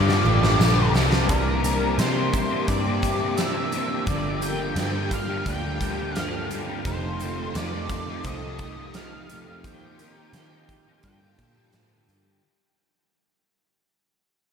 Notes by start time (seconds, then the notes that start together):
Already playing: G2 D3 F3 G3 A#3 F4 A4 D5 F5 G5 A5
0.08 snare, tambourine
0.25 A1 G3 G4, tambourine
0.30 D3
0.43 snare, tambourine
0.60 A#1 G2 D3 G3 A4, snare, tambourine
0.79 tambourine
0.94 C2 G2 D3 G3, snare, tambourine
1.12 snare, tambourine
1.29 C2 C3 E3 G3 A#3 C4 D4 A#4 D5 E5 D6, kick, closed hi-hat
1.63 C3 G3 C4 A#4, closed hi-hat
1.83 E3 A#3 D4
1.98 C3 E3 G3 A#3 C4 D4 G4 C5, snare, closed hi-hat
2.15 G3 C4
2.33 C3 E3 A#3 D4 G4, muted distorted electric guitar stroke, kick, closed hi-hat
2.49 E3 G3 A#3 C4 D4
2.68 G2 C3 E3 A#3 D4 D5, kick, closed hi-hat
2.86 E3 G3 A#3 C4 D4
3.02 C3 E3 A#3 D4 G4, kick, closed hi-hat
3.20 E3 A#3 C4 D4
3.24 G3
3.37 C3 E3 G3 A#3 C4 D4 A4 E5, snare, closed hi-hat
3.56 G3 C4
3.72 C3 E3 G3 A#3 D4 G4, closed hi-hat
3.76 C4
3.89 E3 G3 A#3 C4 D4
4.06 G1 G2 D3 F3 G3 A#3 D4 G4 D5 F5 G5, kick, closed hi-hat
4.41 G2 D3 G3 A#4 G5, closed hi-hat
4.60 F3 A#3 D4
4.76 G2 D3 F3 G3 A#3 D4 G4, snare, closed hi-hat
4.93 D3 G3
5.11 D3 F3 A#3 D4 G4 F5, muted distorted electric guitar stroke, kick, closed hi-hat
5.28 D3 F3 G3 A#3 D4
5.46 D2 D3 F3 A#3 D4 D5 G5, kick, closed hi-hat
5.63 D3 F3 G3 A#3 D4
5.80 D3 F3 A#3 D4 G4, kick, closed hi-hat
5.98 D3 F3 G3 A#3 D4
6.15 G2 D3 F3 G3 A#3 D4 A4 F5, snare, closed hi-hat
6.32 D3 G3
6.50 G2 D3 F3 G3 A#3 D4 G4, closed hi-hat
6.67 D3 F3 G3 A#3 D4
6.85 F1 F2 C3 D#3 A3 D#4 A4 C5, kick, closed hi-hat
6.89 F3
7.20 F2 C3 A4, closed hi-hat
7.24 F3
7.38 D#3 A3 D#4
7.54 F2 C3 D#3 A3 D#4 F4 D5, snare, closed hi-hat
7.59 F3
7.73 C3 F3
7.89 C3 D#3 A3 D#4 F4, muted distorted electric guitar stroke, kick, closed hi-hat
8.08 C3 D#3 F3 A3 D#4
8.24 C2 C3 D#3 A3 C5 D#5, kick, closed hi-hat
8.28 D#4
8.43 C3 D#3 F3 A3 D#4
8.59 C3 D#3 A3 D#4 G4, kick, closed hi-hat
8.77 C3 D#3 F3 A3 D#4
8.94 F2 C3 D#3 A3 D#4 A4 F5, snare, closed hi-hat
8.98 F3
9.13 C3 F3
9.29 F2 C3 D#3 A3 D#4 G4, closed hi-hat
9.33 F3
9.47 C3 D#3 F3 A3 D#4
9.64 D#2 D#3 F3 A#3 C4 D#4 G4 C5 G5 C6, kick, closed hi-hat
9.99 D#3 A#3 D#4 A#4, closed hi-hat
10.18 C4 D#4 G4
10.33 D#3 F3 A#3 C4 D#4 G4, snare, closed hi-hat
10.38 D#4
10.52 A#3 D#4
10.69 F3 C4 D#4 G4, muted distorted electric guitar stroke, kick, closed hi-hat
10.87 A#3 C4 D#4 G4
11.03 G2 D3 F3 A#3 F4 A4 D5 F5 G5 A5, kick, closed hi-hat
11.08 G3
11.21 D3 F3 G3 A#3 F4 A4
11.39 A#2 F3 A#3 F4 G4 A4, kick, closed hi-hat
11.55 F3 G3 A#3 F4 A4
11.60 D3
11.73 G2 A2 D3 F3 A#3 F4 A4, snare, closed hi-hat
11.77 G3
11.91 D3 G3
12.08 G2 D3 F3 G3 A#3 F4 G4 A4, closed hi-hat
12.25 F3 G3 A#3 F4 A4
12.29 D3